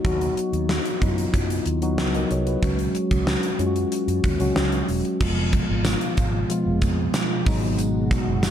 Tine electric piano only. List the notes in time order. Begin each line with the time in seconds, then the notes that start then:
0.04 F#3 B3 D#4 F#4
1.01 F#3 B3 D#4 E4
1.09 F4
1.82 F#3 B3 D#4 F#4
1.98 F#4 B4
2.15 A#4 D#5
2.31 G#4 C#5
2.47 F#4 B4
2.62 F#3 G#3 C#4 F#4
3.59 F#3 G#3 C#4 F4
3.67 F#4
4.39 F#3 G#3 C#4 F#4
5.20 F3 G#3 B3 F4
6.49 F3 G#3 B3 F4
7.47 F#3 G#3 B3 D#4